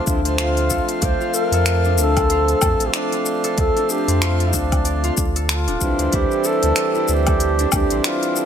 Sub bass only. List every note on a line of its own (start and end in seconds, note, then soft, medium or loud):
0.07 0.81 D2 medium
1.02 1.16 D2 loud
1.52 1.98 F2 loud
1.97 2.55 D2 loud
2.62 2.75 F2 loud
2.80 2.90 A1 loud
3.58 3.71 D2 loud
4.08 4.55 F2 loud
4.54 5.11 D2 loud
5.18 5.69 D2 medium
5.68 5.77 D1 medium
5.81 5.94 C2 medium
5.99 6.09 D2 medium
6.13 6.26 D2 loud
6.63 6.73 D2 loud
7.09 7.66 D2 loud
7.73 7.86 D2 loud
7.92 8.01 A1 loud